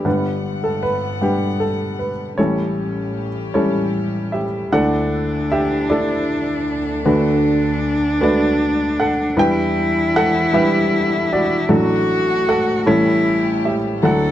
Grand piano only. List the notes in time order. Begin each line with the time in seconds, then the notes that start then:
Already playing: B3 G4
0.05 G1 G2 G3 D4 B4 F#5
0.64 A4
0.83 B4
1.21 G3 D4 G4 B4 F#5
1.60 A4
1.99 B4
2.38 A1 A2 G3 C#4 E4 G4 A4 C#5
3.54 G3 C#4 E4 A4 C#5
4.32 G4 E5
4.72 D2 D3 A3 D4 E4 A4 D5 F#5
5.52 G4 E5
5.90 A3 D4 E4 A4 D5
7.05 D2 D3 A3 D4 F#4 B4
8.21 A3 D4 F#4 B4 D5
9.00 A4 F#5
9.37 E2 E3 G3 D4 E4 B4 G5
10.16 A4 F#5
10.53 G3 D4 E4 G4 B4 E5
11.33 F#4 D5
11.69 A1 A2 F#3 A3 D4 A4
12.49 A4 F#5
12.86 A1 A2 G3 C#4 E4 A4 C#5
13.65 G4 E5
14.03 D2 D3 F#3 D4 E4 A4 F#5